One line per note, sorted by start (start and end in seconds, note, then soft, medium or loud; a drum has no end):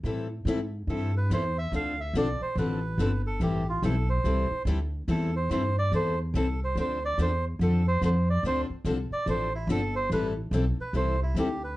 0.03 0.44 A2 medium
0.03 0.26 E3 medium
0.03 0.26 G3 medium
0.03 0.26 C4 medium
0.03 0.26 E4 medium
0.03 0.27 A4 medium
0.45 0.86 G#2 medium
0.45 0.58 E3 medium
0.45 0.58 G3 medium
0.45 0.59 C4 medium
0.45 0.59 E4 medium
0.45 0.59 A4 medium
0.87 1.29 G2 medium
0.87 1.10 E3 soft
0.87 1.10 G3 medium
0.87 1.11 C4 medium
0.87 1.11 E4 medium
0.87 1.14 A4 medium
0.87 1.11 A4 medium
1.17 1.31 B4 medium
1.30 1.71 E2 medium
1.30 1.42 E3 medium
1.30 1.42 G3 medium
1.30 1.42 C4 medium
1.30 1.43 E4 medium
1.30 1.43 A4 medium
1.30 1.57 C5 medium
1.58 1.73 E5 medium
1.72 2.13 D2 medium
1.72 1.94 D3 medium
1.72 1.94 F3 medium
1.72 1.95 C4 medium
1.72 1.95 D4 medium
1.72 1.95 A4 medium
1.72 2.00 F5 medium
2.00 2.15 E5 medium
2.13 2.38 B1 medium
2.13 2.26 D3 medium
2.13 2.26 F3 medium
2.13 2.26 C4 medium
2.13 2.27 D4 medium
2.13 2.27 A4 medium
2.13 2.41 D5 medium
2.41 2.57 C5 medium
2.41 muted upright bass stroke soft
2.56 2.97 A1 medium
2.56 2.78 D3 medium
2.56 2.79 F3 medium
2.56 2.79 C4 medium
2.56 2.79 D4 medium
2.56 2.79 A4 medium
2.56 3.22 B4 medium
2.98 3.39 G1 medium
2.98 3.10 D3 medium
2.98 3.10 F3 medium
2.98 3.10 C4 medium
2.98 3.11 D4 medium
2.98 3.11 A4 medium
3.27 3.41 A4 medium
3.40 3.81 A1 medium
3.40 3.62 E3 medium
3.40 3.62 G3 medium
3.40 3.62 C4 medium
3.40 3.62 E4 medium
3.40 3.67 G4 medium
3.40 3.63 A4 medium
3.69 3.83 F4 medium
3.83 4.23 B1 medium
3.83 3.94 E3 medium
3.83 3.94 G3 medium
3.83 3.95 C4 medium
3.83 3.94 E4 medium
3.83 4.09 A4 medium
3.83 3.95 A4 medium
4.10 4.63 C5 medium
4.24 4.49 C2 medium
4.24 4.46 E3 medium
4.24 4.46 G3 medium
4.24 4.46 C4 medium
4.24 4.47 E4 medium
4.24 4.47 A4 medium
4.51 muted upright bass stroke soft
4.65 5.06 D2 medium
4.65 4.78 E3 medium
4.65 4.78 G3 medium
4.65 4.78 C4 medium
4.65 4.78 E4 medium
4.65 4.78 A4 medium
5.08 5.49 E2 medium
5.08 5.29 E3 medium
5.08 5.30 G3 medium
5.08 5.30 C4 medium
5.08 5.30 E4 medium
5.08 5.30 A4 medium
5.08 5.35 A4 medium
5.36 5.50 C5 medium
5.50 5.90 G2 medium
5.50 5.62 E3 medium
5.50 5.62 G3 medium
5.50 5.62 C4 medium
5.50 5.62 E4 medium
5.50 5.62 A4 medium
5.50 5.76 C5 medium
5.79 5.93 D5 loud
5.92 6.32 E2 medium
5.92 6.14 E3 medium
5.92 6.14 G3 medium
5.92 6.14 C4 medium
5.92 6.14 E4 medium
5.92 6.14 A4 medium
5.92 6.19 C5 medium
6.34 6.74 C2 medium
6.34 6.46 E3 medium
6.34 6.46 G3 medium
6.34 6.46 C4 medium
6.34 6.46 E4 medium
6.34 6.60 A4 medium
6.34 6.46 A4 medium
6.64 6.77 C5 medium
6.75 7.16 D2 medium
6.75 6.98 D3 medium
6.75 6.98 F3 medium
6.75 6.98 C4 medium
6.75 6.98 D4 medium
6.75 6.98 A4 medium
6.80 7.03 C5 medium
7.05 7.19 D5 loud
7.18 7.58 E2 medium
7.18 7.29 D3 medium
7.18 7.29 F3 medium
7.18 7.30 C4 medium
7.18 7.30 D4 medium
7.18 7.30 A4 medium
7.18 7.45 C5 medium
7.59 8.00 F2 medium
7.59 7.81 D3 medium
7.59 7.82 F3 medium
7.59 7.82 C4 medium
7.59 7.82 D4 medium
7.59 7.82 A4 medium
7.59 7.86 A4 medium
7.88 8.02 C5 loud
8.01 8.42 F2 medium
8.01 8.13 D3 medium
8.01 8.13 F3 medium
8.01 8.14 C4 medium
8.01 8.13 D4 medium
8.01 8.14 A4 medium
8.01 8.29 C5 medium
8.30 8.44 D5 medium
8.43 8.67 D2 medium
8.43 8.65 D3 medium
8.43 8.65 F3 medium
8.43 8.65 C4 medium
8.43 8.65 D4 medium
8.43 8.66 A4 medium
8.43 8.61 C5 medium
8.70 muted upright bass stroke soft
8.84 9.09 C2 medium
8.84 8.96 D3 medium
8.84 8.96 F3 medium
8.84 8.97 C4 medium
8.84 8.97 D4 medium
8.84 8.97 A4 medium
9.10 9.27 D5 medium
9.10 muted upright bass stroke soft
9.26 9.67 A1 medium
9.26 9.48 D3 medium
9.26 9.48 F3 medium
9.26 9.48 C4 medium
9.26 9.49 D4 medium
9.26 9.49 A4 medium
9.26 9.53 C5 medium
9.55 9.69 E4 medium
9.67 10.08 G1 medium
9.67 9.80 D3 medium
9.67 9.80 F3 medium
9.67 9.80 C4 medium
9.67 9.80 D4 medium
9.67 9.81 A4 loud
9.67 9.95 A4 medium
9.95 10.10 C5 loud
10.10 10.50 A1 medium
10.10 10.32 E3 medium
10.10 10.32 G3 medium
10.10 10.32 C4 medium
10.10 10.32 E4 medium
10.10 10.32 A4 medium
10.10 10.27 B4 medium
10.51 10.76 B1 medium
10.51 10.63 E3 medium
10.51 10.64 G3 medium
10.51 10.64 C4 medium
10.51 10.64 E4 medium
10.51 10.64 A4 medium
10.77 10.94 B4 medium
10.77 muted upright bass stroke soft
10.93 11.34 C2 medium
10.93 11.15 E3 medium
10.93 11.15 G3 medium
10.93 11.15 C4 medium
10.93 11.15 E4 medium
10.93 11.15 A4 medium
10.93 11.20 C5 medium
11.23 11.36 E4 medium
11.35 11.75 D2 medium
11.35 11.47 E3 medium
11.35 11.47 G3 medium
11.35 11.47 C4 medium
11.35 11.47 E4 loud
11.35 11.48 A4 medium
11.39 11.62 G4 medium
11.64 11.77 B4 medium